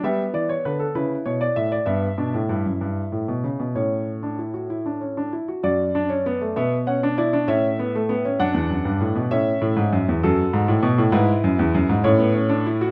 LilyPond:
<<
  \new Staff \with { instrumentName = "Grand piano" } { \time 6/8 \key a \dorian \tempo 4. = 65 << { e''8 d''16 cis''16 b'16 a'16 b'8 cis''16 d''16 e''16 d''16 | \key d \major e''2. | cis''2~ cis''8 r8 | d''4. e''8 fis''8 d''8 |
e''4. fis''4. | e''4. a'4. | b'4. cis''4. | } \\ { b4. e'4. | b8 d'8 e'2 | cis'8. d'16 e'16 fis'16 e'16 d'16 cis'16 d'16 e'16 fis'16 | fis'8 d'16 cis'16 b16 a16 b8 cis'16 d'16 e'16 d'16 |
cis'8 b16 a16 b16 cis'16 d'4. | cis'4. fis'4. | e'4. cis'16 b16 cis'16 d'16 e'16 fis'16 | } >> }
  \new Staff \with { instrumentName = "Grand piano" } { \clef bass \time 6/8 \key a \dorian g8 e8 d8 cis8 b,8 a,8 | \key d \major g,8 b,16 a,16 g,16 fis,16 g,8 a,16 b,16 cis16 b,16 | a,2~ a,8 r8 | fis,4. b,4. |
a,4. fis,16 e,16 fis,16 g,16 a,16 b,16 | a,8 a,16 gis,16 fis,16 e,16 fis,8 gis,16 a,16 b,16 a,16 | gis,8 fis,16 e,16 fis,16 gis,16 a,4. | }
>>